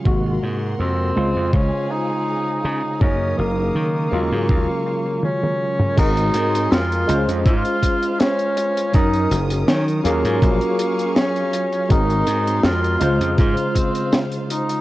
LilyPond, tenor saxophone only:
\new Staff \with { instrumentName = "Tenor saxophone" } { \time 4/4 \key des \major \tempo 4 = 81 r4 c'4 des'8 ees'4. | des'8 bes2~ bes8 des'4 | ees'4 f'4 f'4 des'4 | ees'8 r8 des'8 bes4. des'4 |
ees'4 f'4 f'8 c'8 r8 ees'8 | }